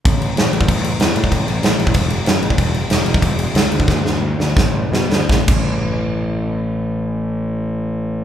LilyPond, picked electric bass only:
\new Staff \with { instrumentName = "Picked electric bass" } { \clef bass \time 4/4 \key d \lydian \tempo 4 = 179 a,,4 a,,8 a,,8 a,,4 e,8 a,8 | a,,8 a,,8 a,,8 a,,8 e,,4 fis,8 a,,8 | e,,4 e,,8 e,,8 e,,4 cis,8 d,8 | d,8 d,8 d,8 d,8 a,,4 b,8 d,8 |
a,,8 a,,2.~ a,,8~ | a,,1 | }